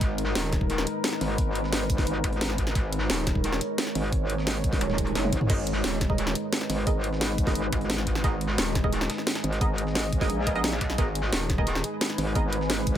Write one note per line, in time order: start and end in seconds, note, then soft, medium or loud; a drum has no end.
0.00 0.34 G#1 loud
0.00 12.98 G#3 medium
0.00 12.98 D#4 medium
0.00 5.46 A#4 medium
0.00 2.74 B4 medium
0.00 kick loud
0.00 closed hi-hat medium
0.18 closed hi-hat medium
0.27 snare soft
0.35 0.85 D#1 loud
0.35 snare loud
0.35 closed hi-hat medium
0.53 kick loud
0.53 snare soft
0.53 closed hi-hat medium
0.61 kick loud
0.70 closed hi-hat medium
0.78 snare soft
0.78 snare medium
0.87 closed hi-hat medium
1.04 snare loud
1.04 closed hi-hat medium
1.13 snare soft
1.21 2.06 G#1 loud
1.21 snare soft
1.21 closed hi-hat medium
1.21 open hi-hat medium
1.38 kick loud
1.38 closed hi-hat medium
1.55 closed hi-hat medium
1.64 snare soft
1.73 snare loud
1.73 closed hi-hat medium
1.90 kick loud
1.90 closed hi-hat medium
1.90 open hi-hat medium
1.98 kick loud
1.98 snare soft
2.07 2.23 G#1 medium
2.07 closed hi-hat loud
2.07 closed hi-hat medium
2.24 2.74 G#1 loud
2.24 kick medium
2.24 closed hi-hat medium
2.24 closed hi-hat loud
2.33 closed hi-hat soft
2.41 snare loud
2.41 closed hi-hat medium
2.50 snare soft
2.58 kick medium
2.58 closed hi-hat medium
2.67 snare soft
2.75 3.08 G#1 loud
2.75 5.49 C#5 loud
2.75 kick loud
2.75 closed hi-hat medium
2.75 closed hi-hat loud
2.93 closed hi-hat medium
3.01 snare soft
3.10 3.60 D#1 loud
3.10 snare loud
3.10 closed hi-hat medium
3.27 kick loud
3.27 snare soft
3.27 closed hi-hat medium
3.27 closed hi-hat loud
3.35 kick loud
3.44 closed hi-hat medium
3.53 snare soft
3.53 snare medium
3.61 closed hi-hat loud
3.61 closed hi-hat medium
3.78 snare loud
3.78 closed hi-hat medium
3.87 snare soft
3.95 4.80 G#1 loud
3.95 snare medium
3.95 closed hi-hat medium
3.95 open hi-hat medium
4.13 kick loud
4.13 closed hi-hat medium
4.13 closed hi-hat loud
4.30 closed hi-hat medium
4.38 snare soft
4.47 snare loud
4.47 closed hi-hat medium
4.64 kick loud
4.64 closed hi-hat medium
4.64 open hi-hat medium
4.73 kick loud
4.73 snare soft
4.81 5.14 D#1 medium
4.81 closed hi-hat medium
4.81 swell medium
4.90 snare soft
4.98 kick medium
4.98 closed hi-hat medium
4.98 closed hi-hat loud
5.07 closed hi-hat soft
5.15 5.31 F#1 loud
5.15 snare medium
5.15 snare loud
5.15 closed hi-hat medium
5.24 high tom medium
5.33 5.48 G#1 loud
5.33 kick medium
5.33 closed hi-hat loud
5.33 closed hi-hat medium
5.41 mid tom medium
5.50 5.83 G#1 loud
5.50 5.60 B3 medium
5.50 5.60 G#4 medium
5.50 12.98 G#4 medium
5.50 5.60 A#4 medium
5.50 8.23 B4 medium
5.50 5.60 D#5 medium
5.50 kick loud
5.50 closed hi-hat medium
5.50 crash medium
5.67 closed hi-hat loud
5.67 closed hi-hat medium
5.75 snare soft
5.84 6.34 D#1 loud
5.84 snare loud
5.84 closed hi-hat medium
6.01 kick loud
6.01 snare medium
6.01 closed hi-hat loud
6.01 closed hi-hat medium
6.10 6.26 B3 medium
6.10 6.26 G#4 medium
6.10 6.26 A#4 medium
6.10 6.26 D#5 medium
6.10 kick loud
6.18 closed hi-hat medium
6.27 snare soft
6.27 snare medium
6.35 closed hi-hat loud
6.35 closed hi-hat medium
6.53 snare loud
6.53 closed hi-hat medium
6.61 snare medium
6.70 7.54 G#1 loud
6.70 snare medium
6.70 closed hi-hat loud
6.70 open hi-hat medium
6.87 6.97 B3 medium
6.87 6.97 G#4 medium
6.87 6.97 A#4 medium
6.87 6.97 D#5 medium
6.87 kick loud
6.87 closed hi-hat medium
7.04 closed hi-hat medium
7.13 snare soft
7.21 snare loud
7.21 closed hi-hat medium
7.38 kick loud
7.38 closed hi-hat medium
7.38 open hi-hat medium
7.47 7.63 B3 medium
7.47 7.63 G#4 medium
7.47 7.63 A#4 medium
7.47 7.63 D#5 medium
7.47 kick loud
7.47 snare soft
7.55 7.71 G#1 loud
7.55 closed hi-hat medium
7.73 8.23 G#1 loud
7.73 kick medium
7.73 closed hi-hat loud
7.73 closed hi-hat medium
7.81 closed hi-hat soft
7.90 snare loud
7.90 closed hi-hat medium
7.98 snare medium
8.07 kick medium
8.07 closed hi-hat medium
8.15 snare medium
8.24 8.57 G#1 loud
8.24 8.34 B3 medium
8.24 8.34 G#4 medium
8.24 8.34 A#4 medium
8.24 10.97 D#5 loud
8.24 8.34 D#5 medium
8.24 kick loud
8.24 closed hi-hat medium
8.41 closed hi-hat medium
8.50 snare soft
8.58 9.08 D#1 loud
8.58 snare loud
8.58 closed hi-hat medium
8.58 closed hi-hat loud
8.75 kick loud
8.75 snare soft
8.75 closed hi-hat medium
8.84 9.00 B3 medium
8.84 9.00 G#4 medium
8.84 9.00 A#4 medium
8.84 9.00 D#5 medium
8.84 kick loud
8.93 closed hi-hat loud
8.93 closed hi-hat medium
9.01 snare soft
9.01 snare medium
9.10 snare loud
9.10 closed hi-hat loud
9.10 closed hi-hat medium
9.18 snare soft
9.27 snare loud
9.27 snare soft
9.27 closed hi-hat medium
9.35 snare loud
9.35 snare soft
9.35 closed hi-hat medium
9.44 10.28 G#1 loud
9.44 closed hi-hat medium
9.53 snare soft
9.53 closed hi-hat medium
9.61 9.71 B3 medium
9.61 9.71 G#4 medium
9.61 9.71 A#4 medium
9.61 9.71 D#5 medium
9.61 kick loud
9.61 closed hi-hat loud
9.61 closed hi-hat medium
9.78 closed hi-hat medium
9.87 snare soft
9.95 snare loud
9.95 closed hi-hat medium
10.13 kick loud
10.13 closed hi-hat medium
10.13 open hi-hat medium
10.21 10.38 B3 medium
10.21 10.37 G#4 medium
10.21 10.38 A#4 medium
10.21 10.38 D#5 medium
10.21 kick loud
10.21 snare soft
10.30 10.80 A#1 loud
10.30 closed hi-hat medium
10.47 10.54 B3 medium
10.47 10.54 G#4 medium
10.47 10.54 A#4 medium
10.47 10.54 D#5 medium
10.47 kick medium
10.47 closed hi-hat medium
10.55 10.66 B3 loud
10.55 10.66 G#4 medium
10.55 10.66 A#4 loud
10.55 10.66 D#5 loud
10.55 closed hi-hat soft
10.64 snare loud
10.64 closed hi-hat medium
10.73 snare soft
10.81 10.97 B1 medium
10.81 kick medium
10.81 closed hi-hat medium
10.90 snare soft
10.98 11.31 G#1 loud
10.98 11.09 B3 medium
10.98 11.09 G#4 medium
10.98 11.09 A#4 medium
10.98 12.98 B4 loud
10.98 11.09 D#5 medium
10.98 kick loud
10.98 closed hi-hat medium
11.15 closed hi-hat medium
11.24 snare soft
11.33 11.83 D#1 loud
11.33 snare loud
11.33 closed hi-hat medium
11.50 kick loud
11.50 snare soft
11.50 closed hi-hat medium
11.58 11.75 B3 medium
11.58 11.75 G#4 medium
11.58 11.75 A#4 medium
11.58 11.75 D#5 medium
11.58 kick loud
11.67 closed hi-hat medium
11.75 snare soft
11.75 snare medium
11.84 closed hi-hat loud
11.84 closed hi-hat medium
12.01 snare loud
12.01 closed hi-hat medium
12.10 snare soft
12.18 12.98 G#1 loud
12.18 snare soft
12.18 closed hi-hat medium
12.18 open hi-hat medium
12.35 12.46 B3 medium
12.35 12.46 G#4 medium
12.35 12.46 A#4 medium
12.35 12.46 D#5 medium
12.35 kick loud
12.35 closed hi-hat medium
12.53 closed hi-hat medium
12.61 snare soft
12.70 snare loud
12.70 closed hi-hat medium
12.70 closed hi-hat loud
12.87 kick loud
12.87 closed hi-hat medium
12.87 open hi-hat medium